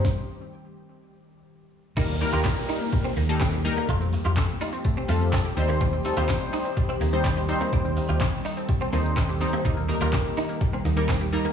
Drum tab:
CC |----------------|x---------------|----------------|----------------|
HH |----------------|x-o-x-o-x-o-x-o-|x-o-x-o-x-o-x-o-|x-o-x-o-x-o-x-o-|
SH |----------------|xxxxxxxxxxxxxxxx|xxxxxxxxxxxxxxxx|xxxxxxxxxxxxxxxx|
CP |----------------|----x-------x---|----x-------x---|----x-------x---|
SD |o---------------|----o-------o---|----o-------o---|----o-------o---|
BD |o---------------|o---o---o---o---|o---o---o---o---|o---o---o---o---|

CC |----------------|----------------|
HH |x-o-x-o-x-o-x-o-|x-o-x-o-x-o-x-o-|
SH |xxxxxxxxxxxxxxxx|xxxxxxxxxxxxxxxx|
CP |----x-------x---|----x-------x---|
SD |----o-------o---|----o-------o---|
BD |o---o---o---o---|o---o---o---o---|